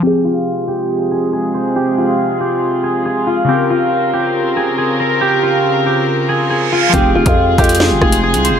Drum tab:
HH |--------------------------------|--------------------------------|--------------------------------|--------------------------------|
SD |--------------------------------|--------------------------------|--------------------------------|--------------------------------|
BD |--------------------------------|--------------------------------|--------------------------------|--------------------------------|

HH |x-----x-----xxxx------x---x-x---|
SD |----------------o---r-----------|
BD |o-----o-----o-------o-----------|